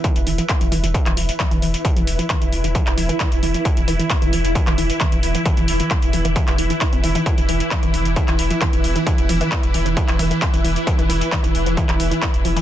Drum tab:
HH |xxoxxxoxxxoxxxox|xxoxxxoxxxoxxxox|xxoxxxoxxxoxxxox|xxoxxxoxxxoxxxox|
CP |----x----x--x---|----x----x--x---|----x----x--x---|----x----x--x---|
BD |o---o---o---o---|o---o---o---o---|o---o---o---o---|o---o---o---o---|

HH |xxoxxxoxxxoxxxox|xxoxxxoxxxoxxxox|xxoxxxoxxxoxxxox|
CP |----x----x--x---|----x----x--x---|----x----x--x---|
BD |o---o---o---o---|o---o---o---o---|o---o---o---o---|